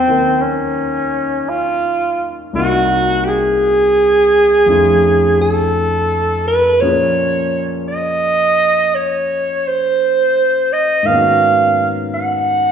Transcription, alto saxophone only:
0.00 0.43 C4 medium
0.42 1.50 C#4 medium
1.49 2.38 F4 medium
2.55 3.26 F#4 medium
3.25 3.29 G4 medium
3.25 5.41 G#4 medium
5.41 6.44 A4 medium
6.48 6.82 B4 medium
6.81 7.71 C#5 medium
7.88 8.96 D#5 medium
8.95 9.69 C#5 medium
9.67 10.75 C5 medium
10.73 11.08 D#5 medium
11.06 11.96 F5 medium
12.14 12.72 F#5 medium

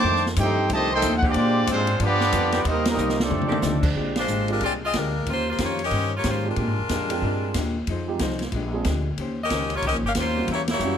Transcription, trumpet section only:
0.00 0.24 C5 loud
0.00 0.25 G5 loud
0.00 0.24 A5 loud
0.00 0.24 D6 loud
0.41 0.69 D#4 loud
0.41 0.69 A4 medium
0.41 0.69 C5 medium
0.41 0.69 G5 loud
0.73 0.91 G4 loud
0.73 0.91 C5 medium
0.73 0.92 D#5 loud
0.73 0.92 A5 loud
0.94 1.15 A4 medium
0.94 1.15 D#5 medium
0.94 1.14 G5 loud
0.94 1.14 C6 loud
1.16 1.23 F#5 medium
1.28 1.70 F4 loud
1.28 1.70 C5 loud
1.28 1.71 D5 loud
1.28 1.71 G5 loud
1.72 2.00 G#3 medium
1.72 2.00 D4 medium
1.72 2.00 F4 medium
1.72 2.00 C5 loud
2.04 2.63 B3 medium
2.04 2.63 F4 loud
2.04 2.63 G4 loud
2.04 2.64 D5 loud
2.68 2.86 C4 medium
2.68 2.86 G4 medium
2.68 2.87 A#4 medium
2.68 2.87 D#5 loud
2.89 3.18 C4 medium
2.89 3.18 G4 medium
2.89 3.17 A#4 medium
2.89 3.18 D#5 medium
3.20 3.84 C4 medium
3.20 3.84 G4 medium
3.20 3.84 A4 medium
3.20 3.85 D5 medium

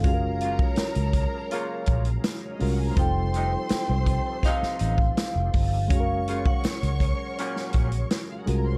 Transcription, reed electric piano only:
0.02 2.56 G#3 medium
0.02 2.56 C#4 medium
0.02 2.57 F4 medium
0.06 2.58 F#4 medium
0.06 0.13 G#4 medium
0.14 2.61 A#4 medium
2.59 2.97 G#3 medium
2.59 2.97 C#4 medium
2.59 2.98 F4 medium
2.59 2.98 F#4 medium
2.59 2.98 A#4 medium
2.95 5.86 G3 medium
2.95 5.86 C4 medium
2.95 5.87 D#4 medium
3.00 5.88 F4 medium
3.00 5.89 A4 medium
5.88 8.42 G#3 medium
5.88 8.43 C#4 medium
5.92 8.44 F#4 medium
5.92 5.99 G#4 medium
6.00 8.48 A#4 medium
8.46 8.78 G#3 medium
8.46 8.78 C#4 medium
8.46 8.78 F4 medium
8.46 8.78 F#4 medium
8.46 8.78 A#4 medium

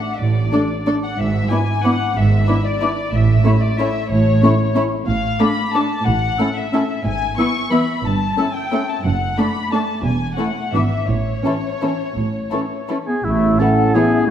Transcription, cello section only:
0.20 0.47 A2 soft
1.19 1.45 G#2 soft
2.16 2.42 G#2 medium
3.13 3.40 A2 medium
4.10 4.37 A2 medium
5.08 5.33 A2 medium
6.06 6.32 A2 medium
7.05 7.30 G#2 medium
8.04 8.30 G2 medium
9.04 9.30 F#2 medium
10.04 10.30 E2 medium
10.74 11.02 G#2 soft
11.08 11.36 A2 soft
12.16 12.45 A2 soft
13.25 13.54 A2 medium

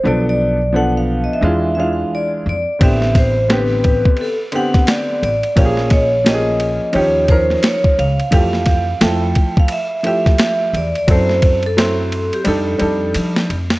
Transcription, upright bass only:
0.05 1.26 B1 loud
1.42 2.02 E2 loud
2.46 2.64 F2 medium
2.81 4.01 A1 loud
5.23 5.41 A1 medium
5.57 6.77 A#1 loud
6.95 7.54 D#2 loud
7.99 8.16 C#2 medium
8.33 8.92 F2 loud
9.02 9.31 F2 medium
10.74 10.92 E2 medium
11.08 12.29 F#2 medium
12.47 12.76 F2 medium
12.81 13.11 F2 medium
13.15 13.45 F3 medium
13.50 13.79 F2 medium

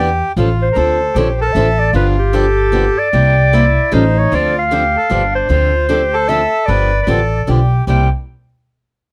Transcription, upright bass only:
0.00 0.20 E2 medium
0.36 0.68 A1 medium
0.76 1.08 D2 medium
1.15 1.49 A#1 medium
1.55 1.88 A1 medium
1.93 2.88 G1 medium
3.13 3.76 C2 medium
3.92 4.24 A1 medium
4.32 4.95 D2 medium
5.11 5.42 G1 medium
5.49 6.44 D2 medium
6.68 7.00 G1 medium
7.07 7.41 A1 medium
7.48 7.81 B1 medium
7.87 8.10 C2 medium

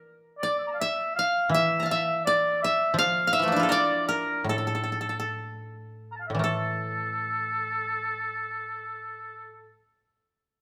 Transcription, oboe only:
0.39 0.58 D5 medium
0.59 0.63 E6 soft
0.63 0.71 A#5 soft
0.63 0.67 D6 soft
0.71 0.79 F5 medium
0.71 0.74 A5 soft
0.80 1.14 E5 medium
1.16 1.50 F5 medium
1.51 1.85 E5 loud
1.90 2.23 E5 medium
2.25 2.59 D5 medium
2.62 2.95 E5 medium
2.98 3.31 F5 loud
3.34 3.67 E5 medium
3.71 4.05 D5 medium
4.08 4.45 A#4 medium
4.50 5.35 A4 medium
6.12 6.15 A#5 soft
6.16 6.20 A5 soft
6.20 6.27 F5 soft
6.27 6.32 E5 soft
6.33 6.38 D5 soft
6.39 6.43 A#4 soft
6.44 9.77 A4 medium

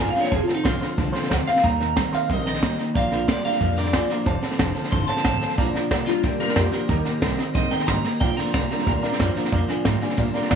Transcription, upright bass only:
0.00 0.13 G1 medium
0.15 muted upright bass stroke medium
0.32 0.43 F1 medium
0.65 0.79 A#1 medium
0.81 muted upright bass stroke medium
0.98 1.12 C2 medium
1.31 1.45 D2 medium
1.48 muted upright bass stroke medium
1.64 1.99 D#2 medium
2.14 muted upright bass stroke medium
2.29 2.64 A#1 medium
2.79 muted upright bass stroke medium
2.95 3.30 A#1 medium
3.45 muted upright bass stroke medium
3.61 3.95 F2 medium
4.10 muted upright bass stroke medium
4.27 4.38 F1 medium
4.59 4.73 F1 medium
4.77 muted upright bass stroke medium
4.92 5.06 G1 medium
5.09 muted upright bass stroke medium
5.25 5.39 A1 medium
5.58 5.74 A#1 medium
5.74 muted upright bass stroke medium
5.91 6.06 C2 medium
6.07 muted upright bass stroke soft
6.24 6.39 D2 medium
6.41 muted upright bass stroke soft
6.57 6.72 F2 loud
6.73 muted upright bass stroke medium
6.89 7.05 D#2 medium
7.22 7.38 C2 medium
7.38 muted upright bass stroke medium
7.55 7.70 A#1 medium
7.71 muted upright bass stroke medium
7.88 8.03 G#1 medium
8.04 muted upright bass stroke medium
8.21 8.37 A#1 medium
8.38 muted upright bass stroke medium
8.54 8.69 C2 medium
8.87 9.02 D2 medium
9.03 muted upright bass stroke medium
9.20 9.34 F#2 loud
9.35 muted upright bass stroke medium
9.52 9.68 F2 medium
9.86 10.01 G#2 medium
10.02 muted upright bass stroke medium
10.18 10.33 A#2 medium
10.34 muted upright bass stroke medium
10.51 10.55 G#2 medium

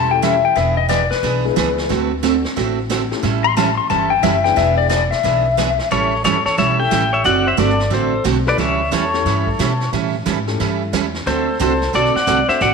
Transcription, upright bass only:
0.00 0.43 E1 medium
0.56 1.10 E1 medium
1.23 1.51 B1 medium
1.57 1.85 C#2 medium
1.90 2.44 D2 medium
2.57 3.10 A1 medium
3.23 3.77 A1 medium
3.90 4.19 G1 medium
4.24 4.52 F#1 medium
4.57 5.11 E1 medium
5.24 5.78 B1 medium
5.91 6.24 A1 medium
6.25 6.44 G1 medium
6.46 muted upright bass stroke soft
6.58 6.91 B1 medium
6.91 7.24 A1 medium
7.25 7.57 F#1 medium
7.58 7.91 G1 medium
7.91 8.24 A1 medium
8.25 8.57 B1 medium
8.58 8.91 C#2 medium
8.92 9.24 E2 medium
9.25 9.58 G2 medium
9.59 9.92 B2 medium
9.93 10.25 A2 medium
10.26 10.59 G#2 medium
10.60 10.92 G2 medium
10.93 11.25 E2 medium
11.26 11.59 D2 medium
11.60 11.93 C2 medium
11.93 12.13 B1 medium
12.15 muted upright bass stroke soft
12.27 12.47 C2 medium
12.49 muted upright bass stroke soft
12.61 12.74 A1 medium

